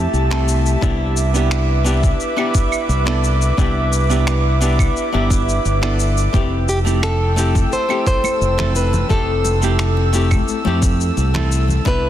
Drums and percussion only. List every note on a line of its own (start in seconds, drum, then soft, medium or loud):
0.14 shaker soft
0.31 finger snap medium
0.48 shaker medium
0.66 shaker soft
0.82 kick loud
0.82 shaker soft
1.17 shaker medium
1.35 shaker soft
1.51 finger snap medium
1.51 shaker soft
1.86 shaker medium
2.04 kick loud
2.04 shaker soft
2.20 shaker soft
2.38 claves medium
2.55 kick loud
2.55 shaker medium
2.72 claves medium
2.72 shaker soft
2.90 shaker soft
3.07 finger snap medium
3.24 shaker medium
3.42 shaker soft
3.58 kick loud
3.58 shaker soft
3.93 shaker medium
4.11 shaker soft
4.27 finger snap medium
4.27 shaker soft
4.62 shaker medium
4.79 kick loud
4.79 claves medium
4.79 shaker soft
4.97 shaker soft
5.30 kick loud
5.30 shaker medium
5.49 shaker soft
5.65 shaker soft
5.83 finger snap medium
6.00 shaker medium
6.17 shaker soft
6.34 kick loud
6.34 muted conga soft
6.34 shaker soft
6.69 shaker medium
6.86 high conga medium
6.86 shaker soft
7.03 finger snap medium
7.03 muted conga medium
7.03 shaker soft
7.38 shaker medium
7.55 kick loud
7.55 muted conga soft
7.55 high conga medium
7.55 shaker soft
7.73 shaker soft
7.90 claves medium
8.07 kick loud
8.07 shaker medium
8.24 muted conga medium
8.24 claves medium
8.24 shaker soft
8.42 shaker soft
8.59 finger snap medium
8.59 low conga medium
8.75 muted conga soft
8.75 shaker medium
8.93 low conga medium
8.93 shaker soft
9.10 kick loud
9.10 shaker soft
9.45 muted conga medium
9.45 shaker medium
9.63 high conga medium
9.63 shaker soft
9.79 finger snap medium
9.79 shaker soft
9.97 muted conga soft
10.14 shaker medium
10.31 kick loud
10.31 high conga medium
10.31 claves medium
10.31 shaker soft
10.48 shaker soft
10.65 muted conga medium
10.83 kick loud
10.83 shaker medium
11.01 shaker soft
11.17 muted conga medium
11.17 shaker soft
11.34 finger snap medium
11.34 low conga medium
11.52 shaker medium
11.68 low conga medium
11.68 shaker soft
11.85 kick loud
11.85 muted conga medium
11.85 shaker soft